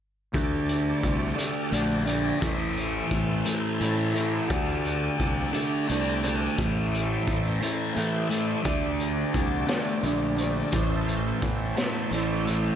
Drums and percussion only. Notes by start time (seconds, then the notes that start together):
0.34 kick, closed hi-hat
0.69 closed hi-hat
1.03 kick, closed hi-hat
1.39 closed hi-hat
1.73 closed hi-hat
2.07 closed hi-hat
2.42 kick, closed hi-hat
2.77 closed hi-hat
3.11 kick, closed hi-hat
3.45 closed hi-hat
3.81 closed hi-hat
4.15 closed hi-hat
4.50 kick, closed hi-hat
4.85 closed hi-hat
5.20 kick, closed hi-hat
5.54 closed hi-hat
5.89 closed hi-hat
6.24 closed hi-hat
6.59 kick, closed hi-hat
6.94 closed hi-hat
7.28 kick, closed hi-hat
7.62 closed hi-hat
7.96 closed hi-hat
8.31 closed hi-hat
8.65 kick, closed hi-hat
9.00 closed hi-hat
9.34 kick, closed hi-hat
9.68 snare, closed hi-hat
10.03 closed hi-hat
10.38 closed hi-hat
10.72 kick, closed hi-hat
11.08 closed hi-hat
11.42 kick, closed hi-hat
11.77 snare, closed hi-hat
12.12 closed hi-hat
12.47 closed hi-hat